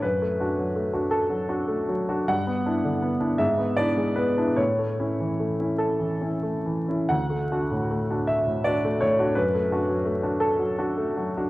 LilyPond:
\new Staff \with { instrumentName = "Grand piano" } { \time 6/8 \key d \major \tempo 4. = 52 << { b'4. a'4. | fis''4. e''8 d''8 b'8 | cis''4. a'4. | fis''4. e''8 d''8 cis''8 |
b'4. a'4. | } \\ { fis,16 a16 <d' fis'>16 fis16 a16 <d' fis'>8 fis16 <d' fis'>16 a16 fis16 <d' fis'>16 | g,16 b16 <d' e'>16 d16 b16 <d' e'>16 gis,16 b16 <d' e'>16 gis16 b16 <d' e'>16 | a,16 a16 <cis' e'>16 e16 a16 <cis' e'>8 e16 <cis' e'>16 a16 e16 <cis' e'>16 | d,16 a16 <d' fis'>16 a,16 a16 <d' fis'>8 a,16 <d' fis'>16 a16 a,16 <d' fis'>16 |
fis,16 a16 <d' fis'>16 fis16 a16 <d' fis'>8 fis16 <d' fis'>16 a16 fis16 <d' fis'>16 | } >> }